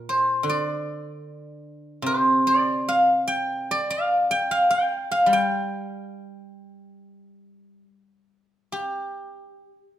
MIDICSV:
0, 0, Header, 1, 2, 480
1, 0, Start_track
1, 0, Tempo, 806452
1, 1215, Time_signature, 4, 2, 24, 8
1, 3630, Tempo, 862069
1, 5796, End_track
2, 0, Start_track
2, 0, Title_t, "Guzheng"
2, 0, Program_c, 0, 107
2, 0, Note_on_c, 0, 46, 52
2, 0, Note_on_c, 0, 70, 75
2, 54, Note_on_c, 0, 72, 67
2, 257, Note_on_c, 0, 50, 58
2, 269, Note_off_c, 0, 46, 0
2, 294, Note_on_c, 0, 74, 72
2, 837, Note_off_c, 0, 70, 0
2, 1204, Note_on_c, 0, 48, 55
2, 1226, Note_off_c, 0, 72, 0
2, 1229, Note_on_c, 0, 72, 84
2, 1393, Note_off_c, 0, 74, 0
2, 1470, Note_on_c, 0, 74, 87
2, 1689, Note_off_c, 0, 50, 0
2, 1717, Note_on_c, 0, 77, 85
2, 1950, Note_on_c, 0, 79, 91
2, 2206, Note_off_c, 0, 74, 0
2, 2209, Note_on_c, 0, 74, 90
2, 2321, Note_off_c, 0, 77, 0
2, 2324, Note_on_c, 0, 77, 85
2, 2407, Note_off_c, 0, 72, 0
2, 2562, Note_off_c, 0, 79, 0
2, 2565, Note_on_c, 0, 79, 94
2, 2665, Note_off_c, 0, 48, 0
2, 2683, Note_off_c, 0, 77, 0
2, 2685, Note_on_c, 0, 77, 88
2, 2798, Note_off_c, 0, 79, 0
2, 2801, Note_on_c, 0, 79, 84
2, 3042, Note_off_c, 0, 77, 0
2, 3044, Note_on_c, 0, 77, 82
2, 3132, Note_on_c, 0, 55, 57
2, 3169, Note_off_c, 0, 79, 0
2, 3172, Note_on_c, 0, 79, 87
2, 3307, Note_off_c, 0, 74, 0
2, 4010, Note_off_c, 0, 77, 0
2, 4578, Note_off_c, 0, 79, 0
2, 4582, Note_off_c, 0, 55, 0
2, 5091, Note_on_c, 0, 67, 66
2, 5796, Note_off_c, 0, 67, 0
2, 5796, End_track
0, 0, End_of_file